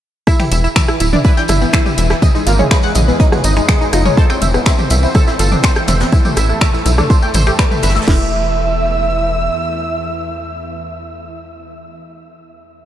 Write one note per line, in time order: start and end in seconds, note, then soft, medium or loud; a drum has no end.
0.27 8.06 E2 medium
0.27 8.06 E3 medium
0.27 0.36 E4 loud
0.27 0.32 E4 loud
0.27 0.36 E5 loud
0.27 kick loud
0.27 cross-stick medium
0.27 closed hi-hat medium
0.27 tambourine medium
0.40 0.48 E3 medium
0.40 0.48 E4 medium
0.40 0.45 G4 medium
0.40 finger snap soft
0.40 mid tom loud
0.40 tambourine soft
0.52 0.68 E1 loud
0.52 0.60 E3 medium
0.52 0.60 E4 medium
0.52 0.55 E5 medium
0.52 closed hi-hat medium
0.52 closed hi-hat loud
0.52 tambourine medium
0.64 0.69 E4 medium
0.64 closed hi-hat soft
0.64 tambourine soft
0.76 0.84 E3 medium
0.76 0.84 E4 medium
0.76 0.81 E5 medium
0.76 finger snap loud
0.76 kick loud
0.76 snare loud
0.76 closed hi-hat medium
0.76 mid tom loud
0.76 tambourine medium
0.88 0.96 E3 medium
0.88 0.96 E4 medium
0.88 cross-stick medium
0.88 tambourine soft
1.00 1.17 D1 loud
1.00 1.05 E4 medium
1.00 snare soft
1.00 closed hi-hat loud
1.00 closed hi-hat medium
1.00 tambourine medium
1.13 1.21 E3 medium
1.13 1.18 D4 loud
1.13 1.21 E4 medium
1.13 mid tom loud
1.13 tambourine soft
1.24 1.33 E4 medium
1.24 1.30 B4 loud
1.24 1.33 E5 medium
1.24 kick loud
1.24 closed hi-hat medium
1.24 tambourine soft
1.37 1.45 E3 medium
1.37 1.45 E4 medium
1.37 1.42 G5 loud
1.37 snare soft
1.37 tambourine soft
1.48 1.65 G1 loud
1.48 1.58 E4 medium
1.48 1.58 E5 medium
1.48 1.54 E5 medium
1.48 cross-stick medium
1.48 snare soft
1.48 closed hi-hat medium
1.48 closed hi-hat loud
1.48 mid tom medium
1.48 tambourine medium
1.61 1.70 E3 medium
1.61 1.66 B3 medium
1.61 1.70 E4 medium
1.61 closed hi-hat soft
1.61 tambourine soft
1.73 1.82 E3 medium
1.73 1.82 E4 medium
1.73 1.79 E4 loud
1.73 finger snap loud
1.73 kick loud
1.73 snare loud
1.73 closed hi-hat medium
1.73 tambourine medium
1.86 1.91 G4 medium
1.86 mid tom medium
1.86 tambourine soft
1.98 2.14 E1 loud
1.98 2.06 E3 medium
1.98 2.06 E4 medium
1.98 2.01 E5 medium
1.98 closed hi-hat loud
1.98 closed hi-hat medium
1.98 tambourine medium
2.10 2.18 E3 medium
2.10 2.15 E4 medium
2.10 2.18 E4 medium
2.10 cross-stick medium
2.10 snare medium
2.10 tambourine soft
2.22 2.27 D#5 medium
2.22 kick loud
2.22 closed hi-hat medium
2.22 mid tom medium
2.22 tambourine medium
2.35 2.43 G#3 medium
2.35 2.42 D#4 medium
2.35 2.43 G#4 medium
2.35 closed hi-hat soft
2.35 tambourine soft
2.46 2.63 G#1 loud
2.46 2.55 A#3 medium
2.46 2.52 F4 medium
2.46 2.55 A#4 medium
2.46 closed hi-hat medium
2.46 closed hi-hat loud
2.46 tambourine medium
2.59 2.67 G#3 medium
2.59 2.64 C#4 loud
2.59 2.67 G#4 medium
2.59 mid tom medium
2.59 tambourine soft
2.71 2.79 G#3 medium
2.71 2.79 G#4 medium
2.71 2.76 B4 loud
2.71 finger snap loud
2.71 kick loud
2.71 cross-stick medium
2.71 snare loud
2.71 closed hi-hat medium
2.71 tambourine medium
2.83 2.92 G#3 medium
2.83 2.92 G#4 medium
2.83 2.88 F#5 loud
2.83 tambourine soft
2.95 3.12 A#1 loud
2.95 3.01 D#5 medium
2.95 closed hi-hat loud
2.95 closed hi-hat medium
2.95 mid tom loud
2.95 tambourine medium
3.08 3.16 G#3 medium
3.08 3.13 B3 medium
3.08 3.16 G#4 medium
3.08 tambourine soft
3.20 3.25 D#4 loud
3.20 kick loud
3.20 closed hi-hat medium
3.20 tambourine soft
3.32 3.40 G#3 medium
3.32 3.37 F#4 medium
3.32 3.40 G#4 medium
3.32 cross-stick medium
3.32 mid tom loud
3.32 tambourine soft
3.44 3.61 G#1 loud
3.44 3.53 D#4 medium
3.44 3.53 D#5 loud
3.44 3.47 D#5 medium
3.44 closed hi-hat loud
3.44 closed hi-hat medium
3.44 tambourine loud
3.57 3.65 G#3 medium
3.57 3.62 D#4 medium
3.57 3.65 G#4 medium
3.57 finger snap soft
3.57 closed hi-hat soft
3.57 tambourine soft
3.68 3.77 G#3 medium
3.68 3.77 G#4 medium
3.68 3.74 D#5 medium
3.68 finger snap loud
3.68 kick loud
3.68 snare loud
3.68 closed hi-hat medium
3.68 mid tom medium
3.68 tambourine medium
3.81 3.89 G#3 medium
3.81 3.88 D#4 medium
3.81 3.89 G#4 medium
3.81 tambourine soft
3.93 4.09 F#1 medium
3.93 4.01 D#4 medium
3.93 3.98 F4 medium
3.93 4.01 D#5 medium
3.93 cross-stick medium
3.93 closed hi-hat medium
3.93 closed hi-hat loud
3.93 tambourine medium
4.05 4.14 G#3 medium
4.05 4.10 C#4 loud
4.05 4.14 G#4 medium
4.05 closed hi-hat soft
4.05 mid tom medium
4.05 tambourine soft
4.17 4.26 A4 loud
4.17 4.22 C5 loud
4.17 4.26 A5 loud
4.17 kick loud
4.17 closed hi-hat medium
4.17 tambourine medium
4.30 4.38 C4 medium
4.30 4.38 C5 medium
4.30 4.35 G5 loud
4.30 finger snap soft
4.30 tambourine soft
4.42 4.58 F1 loud
4.42 4.50 C4 medium
4.42 4.50 C5 medium
4.42 4.47 E5 medium
4.42 closed hi-hat loud
4.42 closed hi-hat medium
4.42 mid tom medium
4.42 tambourine loud
4.54 4.59 B3 medium
4.54 cross-stick soft
4.54 closed hi-hat soft
4.54 tambourine soft
4.66 4.75 C4 medium
4.66 4.71 E4 loud
4.66 4.75 C5 medium
4.66 finger snap loud
4.66 kick loud
4.66 snare loud
4.66 closed hi-hat loud
4.66 tambourine medium
4.79 4.87 C4 medium
4.79 4.84 G4 medium
4.79 4.87 C5 medium
4.79 mid tom medium
4.79 tambourine soft
4.90 5.07 C2 loud
4.90 4.94 E5 medium
4.90 snare soft
4.90 closed hi-hat loud
4.90 closed hi-hat medium
4.90 tambourine loud
5.03 5.11 C4 medium
5.03 5.08 E4 medium
5.03 5.11 C5 medium
5.03 tambourine soft
5.14 5.23 A4 medium
5.14 5.20 E5 medium
5.14 5.23 A5 medium
5.14 kick loud
5.14 cross-stick medium
5.14 closed hi-hat medium
5.14 mid tom medium
5.14 tambourine medium
5.27 5.35 C4 medium
5.27 5.35 E4 medium
5.27 5.35 C5 medium
5.27 snare soft
5.27 tambourine soft
5.39 5.56 G1 loud
5.39 5.44 F4 medium
5.39 5.48 A4 medium
5.39 5.48 A5 loud
5.39 snare soft
5.39 closed hi-hat loud
5.39 closed hi-hat medium
5.39 tambourine medium
5.51 5.60 C4 medium
5.51 5.57 D4 loud
5.51 5.60 C5 medium
5.51 closed hi-hat soft
5.51 mid tom medium
5.51 tambourine soft
5.63 5.72 C4 medium
5.63 5.69 C5 loud
5.63 5.72 C5 medium
5.63 finger snap loud
5.63 kick loud
5.63 snare loud
5.63 closed hi-hat medium
5.63 tambourine medium
5.76 5.81 G5 loud
5.76 cross-stick medium
5.76 tambourine soft
5.88 6.04 F1 loud
5.88 5.96 C4 medium
5.88 5.97 C5 medium
5.88 5.93 E5 medium
5.88 snare loud
5.88 closed hi-hat medium
5.88 closed hi-hat loud
5.88 mid tom medium
5.88 tambourine loud
6.00 6.05 B3 medium
6.00 6.09 C4 medium
6.00 6.09 C5 medium
6.00 snare loud
6.00 closed hi-hat medium
6.00 tambourine soft
6.12 6.18 E4 loud
6.12 kick loud
6.12 closed hi-hat medium
6.12 tambourine soft
6.24 6.33 A3 medium
6.24 6.30 G4 medium
6.24 6.33 A4 medium
6.24 closed hi-hat soft
6.24 mid tom medium
6.24 tambourine soft
6.36 6.53 A1 loud
6.36 6.45 E4 loud
6.36 6.45 E5 medium
6.36 6.40 E5 medium
6.36 cross-stick medium
6.36 closed hi-hat medium
6.36 closed hi-hat loud
6.36 tambourine medium
6.49 6.57 A3 medium
6.49 6.54 E4 medium
6.49 6.57 A4 medium
6.49 tambourine soft
6.61 6.70 A3 medium
6.61 6.66 E5 medium
6.61 finger snap loud
6.61 kick loud
6.61 snare loud
6.61 closed hi-hat medium
6.61 mid tom medium
6.61 tambourine medium
6.74 6.82 A3 medium
6.74 6.81 E4 medium
6.74 6.82 A4 medium
6.74 tambourine soft
6.86 7.02 B1 loud
6.86 6.91 E4 medium
6.86 closed hi-hat loud
6.86 closed hi-hat medium
6.86 tambourine loud
6.98 7.06 A3 medium
6.98 7.03 D4 loud
6.98 7.06 A4 medium
6.98 cross-stick medium
6.98 mid tom medium
6.98 tambourine soft
7.10 7.15 C5 loud
7.10 kick loud
7.10 closed hi-hat medium
7.10 tambourine medium
7.22 7.31 A3 medium
7.22 7.31 A4 medium
7.22 7.27 G5 loud
7.22 tambourine soft
7.34 7.51 A1 loud
7.34 7.38 E4 medium
7.34 7.43 C5 medium
7.34 7.43 C6 medium
7.34 closed hi-hat medium
7.34 closed hi-hat loud
7.34 mid tom medium
7.34 tambourine loud
7.46 7.55 A3 medium
7.46 7.52 G4 loud
7.46 7.55 A4 medium
7.46 finger snap soft
7.46 closed hi-hat soft
7.46 tambourine soft
7.59 7.67 A3 medium
7.59 7.67 A4 medium
7.59 7.64 B4 loud
7.59 finger snap loud
7.59 kick loud
7.59 cross-stick soft
7.59 snare loud
7.59 closed hi-hat medium
7.59 tambourine medium
7.71 7.79 A3 medium
7.71 7.79 A4 medium
7.71 7.76 B4 medium
7.71 mid tom medium
7.71 tambourine soft
7.82 8.00 G1 medium
7.82 7.88 B4 loud
7.82 7.92 E5 medium
7.82 7.92 E6 medium
7.82 snare medium
7.82 closed hi-hat medium
7.82 closed hi-hat loud
7.82 tambourine loud
7.89 snare medium
7.89 closed hi-hat medium
7.95 8.04 A3 medium
7.95 8.01 E4 loud
7.95 8.04 A4 medium
7.95 snare medium
7.95 closed hi-hat medium
7.95 tambourine soft
8.01 snare medium
8.01 closed hi-hat medium
8.08 9.50 E1 medium
8.08 11.11 E2 medium
8.08 11.11 E3 medium
8.08 8.30 E4 medium
8.08 11.11 E5 loud
8.08 kick loud
8.08 snare loud
8.08 crash medium